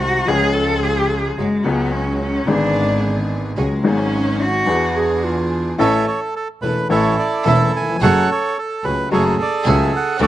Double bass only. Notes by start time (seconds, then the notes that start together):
Already playing: C2
0.27 C#2
1.38 F#1
1.65 C#2
2.46 G#1
3.57 C#2
3.85 G#1
4.67 E2
5.79 A1
6.62 E1
6.90 A1
7.46 E1
8.01 F#1
8.83 C#2
9.11 F#1
9.65 C#2
10.20 D2